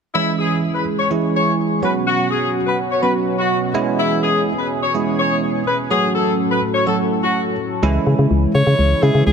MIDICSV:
0, 0, Header, 1, 6, 480
1, 0, Start_track
1, 0, Key_signature, 4, "minor"
1, 0, Tempo, 480000
1, 147, Time_signature, 4, 2, 24, 8
1, 9326, End_track
2, 0, Start_track
2, 0, Title_t, "Horn section"
2, 0, Program_c, 0, 61
2, 146, Note_on_c, 0, 64, 95
2, 337, Note_off_c, 0, 64, 0
2, 387, Note_on_c, 0, 68, 72
2, 577, Note_off_c, 0, 68, 0
2, 746, Note_on_c, 0, 71, 63
2, 842, Note_off_c, 0, 71, 0
2, 986, Note_on_c, 0, 73, 72
2, 1081, Note_off_c, 0, 73, 0
2, 1346, Note_on_c, 0, 73, 75
2, 1537, Note_off_c, 0, 73, 0
2, 1827, Note_on_c, 0, 71, 69
2, 1922, Note_off_c, 0, 71, 0
2, 2067, Note_on_c, 0, 66, 90
2, 2257, Note_off_c, 0, 66, 0
2, 2306, Note_on_c, 0, 68, 71
2, 2496, Note_off_c, 0, 68, 0
2, 2665, Note_on_c, 0, 71, 72
2, 2761, Note_off_c, 0, 71, 0
2, 2906, Note_on_c, 0, 73, 69
2, 3001, Note_off_c, 0, 73, 0
2, 3023, Note_on_c, 0, 71, 74
2, 3120, Note_off_c, 0, 71, 0
2, 3385, Note_on_c, 0, 66, 77
2, 3576, Note_off_c, 0, 66, 0
2, 3984, Note_on_c, 0, 64, 95
2, 4175, Note_off_c, 0, 64, 0
2, 4226, Note_on_c, 0, 68, 76
2, 4416, Note_off_c, 0, 68, 0
2, 4586, Note_on_c, 0, 71, 63
2, 4682, Note_off_c, 0, 71, 0
2, 4824, Note_on_c, 0, 73, 76
2, 4920, Note_off_c, 0, 73, 0
2, 5186, Note_on_c, 0, 73, 80
2, 5377, Note_off_c, 0, 73, 0
2, 5666, Note_on_c, 0, 71, 71
2, 5761, Note_off_c, 0, 71, 0
2, 5906, Note_on_c, 0, 68, 88
2, 6096, Note_off_c, 0, 68, 0
2, 6146, Note_on_c, 0, 69, 74
2, 6337, Note_off_c, 0, 69, 0
2, 6507, Note_on_c, 0, 71, 75
2, 6602, Note_off_c, 0, 71, 0
2, 6746, Note_on_c, 0, 73, 71
2, 6842, Note_off_c, 0, 73, 0
2, 6865, Note_on_c, 0, 69, 73
2, 6961, Note_off_c, 0, 69, 0
2, 7226, Note_on_c, 0, 66, 78
2, 7416, Note_off_c, 0, 66, 0
2, 9326, End_track
3, 0, Start_track
3, 0, Title_t, "Alto saxophone"
3, 0, Program_c, 1, 65
3, 8546, Note_on_c, 1, 73, 111
3, 9026, Note_on_c, 1, 68, 97
3, 9041, Note_off_c, 1, 73, 0
3, 9259, Note_off_c, 1, 68, 0
3, 9265, Note_on_c, 1, 68, 90
3, 9326, Note_off_c, 1, 68, 0
3, 9326, End_track
4, 0, Start_track
4, 0, Title_t, "Tine electric piano"
4, 0, Program_c, 2, 4
4, 146, Note_on_c, 2, 52, 72
4, 147, Note_on_c, 2, 56, 65
4, 150, Note_on_c, 2, 61, 64
4, 151, Note_on_c, 2, 64, 76
4, 829, Note_off_c, 2, 52, 0
4, 830, Note_off_c, 2, 56, 0
4, 831, Note_off_c, 2, 61, 0
4, 832, Note_off_c, 2, 64, 0
4, 1105, Note_on_c, 2, 52, 69
4, 1107, Note_on_c, 2, 56, 63
4, 1109, Note_on_c, 2, 61, 63
4, 1110, Note_on_c, 2, 64, 75
4, 1789, Note_off_c, 2, 52, 0
4, 1790, Note_off_c, 2, 56, 0
4, 1791, Note_off_c, 2, 61, 0
4, 1792, Note_off_c, 2, 64, 0
4, 1824, Note_on_c, 2, 54, 72
4, 1825, Note_on_c, 2, 59, 65
4, 1827, Note_on_c, 2, 61, 67
4, 1829, Note_on_c, 2, 66, 79
4, 2593, Note_off_c, 2, 54, 0
4, 2594, Note_off_c, 2, 59, 0
4, 2595, Note_off_c, 2, 61, 0
4, 2596, Note_off_c, 2, 66, 0
4, 3024, Note_on_c, 2, 54, 70
4, 3025, Note_on_c, 2, 59, 61
4, 3027, Note_on_c, 2, 61, 65
4, 3028, Note_on_c, 2, 66, 77
4, 3708, Note_off_c, 2, 54, 0
4, 3709, Note_off_c, 2, 59, 0
4, 3710, Note_off_c, 2, 61, 0
4, 3711, Note_off_c, 2, 66, 0
4, 3743, Note_on_c, 2, 56, 89
4, 3744, Note_on_c, 2, 59, 80
4, 3746, Note_on_c, 2, 61, 82
4, 3748, Note_on_c, 2, 64, 100
4, 4513, Note_off_c, 2, 56, 0
4, 4514, Note_off_c, 2, 59, 0
4, 4515, Note_off_c, 2, 61, 0
4, 4516, Note_off_c, 2, 64, 0
4, 4944, Note_on_c, 2, 56, 70
4, 4945, Note_on_c, 2, 59, 62
4, 4947, Note_on_c, 2, 61, 63
4, 4949, Note_on_c, 2, 64, 79
4, 5628, Note_off_c, 2, 56, 0
4, 5629, Note_off_c, 2, 59, 0
4, 5630, Note_off_c, 2, 61, 0
4, 5631, Note_off_c, 2, 64, 0
4, 5904, Note_on_c, 2, 54, 74
4, 5905, Note_on_c, 2, 57, 66
4, 5907, Note_on_c, 2, 61, 67
4, 5908, Note_on_c, 2, 66, 81
4, 6588, Note_off_c, 2, 54, 0
4, 6589, Note_off_c, 2, 57, 0
4, 6590, Note_off_c, 2, 61, 0
4, 6591, Note_off_c, 2, 66, 0
4, 6865, Note_on_c, 2, 54, 74
4, 6865, Note_on_c, 2, 57, 62
4, 6868, Note_on_c, 2, 61, 68
4, 6870, Note_on_c, 2, 66, 80
4, 7549, Note_off_c, 2, 54, 0
4, 7549, Note_off_c, 2, 57, 0
4, 7550, Note_off_c, 2, 61, 0
4, 7551, Note_off_c, 2, 66, 0
4, 7826, Note_on_c, 2, 52, 91
4, 7828, Note_on_c, 2, 56, 77
4, 7830, Note_on_c, 2, 61, 83
4, 7831, Note_on_c, 2, 64, 96
4, 8509, Note_off_c, 2, 52, 0
4, 8510, Note_off_c, 2, 56, 0
4, 8511, Note_off_c, 2, 61, 0
4, 8512, Note_off_c, 2, 64, 0
4, 9024, Note_on_c, 2, 52, 65
4, 9025, Note_on_c, 2, 56, 63
4, 9027, Note_on_c, 2, 61, 58
4, 9028, Note_on_c, 2, 64, 74
4, 9326, Note_off_c, 2, 52, 0
4, 9326, Note_off_c, 2, 56, 0
4, 9326, Note_off_c, 2, 61, 0
4, 9326, Note_off_c, 2, 64, 0
4, 9326, End_track
5, 0, Start_track
5, 0, Title_t, "Analog synth pad"
5, 0, Program_c, 3, 89
5, 148, Note_on_c, 3, 52, 68
5, 148, Note_on_c, 3, 56, 63
5, 148, Note_on_c, 3, 68, 75
5, 149, Note_on_c, 3, 61, 60
5, 1811, Note_off_c, 3, 52, 0
5, 1811, Note_off_c, 3, 56, 0
5, 1811, Note_off_c, 3, 68, 0
5, 1828, Note_on_c, 3, 54, 68
5, 1828, Note_on_c, 3, 66, 84
5, 1829, Note_on_c, 3, 47, 70
5, 3728, Note_off_c, 3, 54, 0
5, 3728, Note_off_c, 3, 66, 0
5, 3746, Note_on_c, 3, 52, 69
5, 3747, Note_on_c, 3, 68, 86
5, 5868, Note_off_c, 3, 47, 0
5, 5885, Note_off_c, 3, 52, 0
5, 5885, Note_off_c, 3, 68, 0
5, 5907, Note_on_c, 3, 45, 70
5, 5907, Note_on_c, 3, 54, 65
5, 5908, Note_on_c, 3, 69, 77
5, 7788, Note_off_c, 3, 61, 0
5, 7808, Note_off_c, 3, 45, 0
5, 7808, Note_off_c, 3, 54, 0
5, 7808, Note_off_c, 3, 69, 0
5, 7828, Note_on_c, 3, 49, 69
5, 7828, Note_on_c, 3, 52, 64
5, 7828, Note_on_c, 3, 56, 62
5, 7828, Note_on_c, 3, 64, 77
5, 9326, Note_off_c, 3, 49, 0
5, 9326, Note_off_c, 3, 52, 0
5, 9326, Note_off_c, 3, 56, 0
5, 9326, Note_off_c, 3, 64, 0
5, 9326, End_track
6, 0, Start_track
6, 0, Title_t, "FM bass"
6, 0, Program_c, 4, 39
6, 7827, Note_on_c, 4, 37, 100
6, 7983, Note_off_c, 4, 37, 0
6, 8066, Note_on_c, 4, 49, 95
6, 8145, Note_off_c, 4, 49, 0
6, 8187, Note_on_c, 4, 49, 96
6, 8265, Note_off_c, 4, 49, 0
6, 8307, Note_on_c, 4, 37, 105
6, 8463, Note_off_c, 4, 37, 0
6, 8547, Note_on_c, 4, 49, 88
6, 8625, Note_off_c, 4, 49, 0
6, 8667, Note_on_c, 4, 49, 93
6, 8745, Note_off_c, 4, 49, 0
6, 8787, Note_on_c, 4, 37, 94
6, 8943, Note_off_c, 4, 37, 0
6, 9026, Note_on_c, 4, 49, 99
6, 9105, Note_off_c, 4, 49, 0
6, 9147, Note_on_c, 4, 49, 88
6, 9225, Note_off_c, 4, 49, 0
6, 9266, Note_on_c, 4, 37, 100
6, 9326, Note_off_c, 4, 37, 0
6, 9326, End_track
0, 0, End_of_file